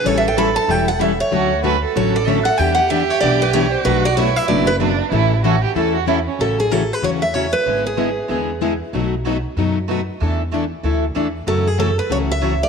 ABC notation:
X:1
M:4/4
L:1/8
Q:"Swing" 1/4=189
K:Amix
V:1 name="Steel-string acoustic guitar"
(3c e g b a g f e c- | c2 z2 c d e f | g f e c d B c =c | B d c e d B z2 |
z8 | [K:A] A G A B c e c B- | B G6 z | z8 |
z8 | A G A B c e2 d |]
V:2 name="Violin"
A6- A z | F2 B A4- A | G8 | F2 E4 D2 |
E2 F G A F E C | [K:A] z8 | z8 | z8 |
z8 | z8 |]
V:3 name="Steel-string acoustic guitar"
[E,G,CEA] z [E,G,CEA] z [E,G,CEA] z [E,G,CEA] z | [D,A,CFA] z [D,A,CFA] z [D,A,CFA] z [D,A,CFA] z | [E,G,DEB] z [E,G,DEB] z [E,G,DEB] z [E,G,DEB] z | [B,,F,A,DFB] z [B,,F,A,DFB] z [B,,F,A,DFB] z [B,,F,A,DFB] z |
[E,A,CEA] z [E,A,CEA] z [E,A,CEA] z [E,A,CEA] z | [K:A] [C,F,CE] z [C,F,CE] z [C,F,CE] z [C,F,CE] z | [D,G,B,EG] z [D,G,B,EG] z [D,G,B,EG] z [D,G,B,EG] z | [B,,F,A,^DFB] z [B,,F,A,DFB] z [B,,F,A,DFB] z [B,,F,A,DFB] z |
[E,A,DEA] z [E,A,DEA] z [E,A,DEA] z [E,A,DEA] z | [F,A,EFc] z [F,A,EFc] z [F,A,EFc] z [F,A,EFc] z |]
V:4 name="Steel-string acoustic guitar"
[E,G,CEA] z [E,G,CEA] z [E,G,CEA] z [E,G,CEA] z | [D,F,A,CF] z [D,F,A,CF] z [D,F,A,CF] z [D,F,A,CF] z | [E,B,DG] z [E,B,DG] z [E,B,DG] z [E,B,DG] z | [B,,F,A,DF] z [B,,F,A,DF] z [B,,F,A,DF] z [B,,F,A,DF] z |
[E,A,CEA] z [E,A,CEA] z [E,A,CEA] z [E,A,CEA] z | [K:A] [C,E,A,CF] z [C,E,A,CF] z [C,E,A,CF] z [C,E,A,CF] z | [D,G,B,EG] z [D,G,B,EG] z [D,G,B,EG] z [D,G,B,EG] z | [B,,F,A,^DF] z [B,,F,A,DF] z [B,,F,A,DF] z [B,,F,A,DF] z |
[E,A,DEA] z [E,A,DEA] z [E,A,DEA] z [E,A,DEA] z | [C,E,A,CF] z [C,E,A,CF] z [C,E,A,CF] z [C,E,A,CF] z |]
V:5 name="Upright bass" clef=bass
A,,,4 E,,,4 | D,,4 A,,,4 | E,,4 B,,,4 | B,,,4 F,,,4 |
A,,,4 E,,4 | [K:A] A,,,4 E,,4 | G,,,4 E,,4 | B,,,4 F,,4 |
E,,4 D,,2 E,,2 | F,,4 C,,4 |]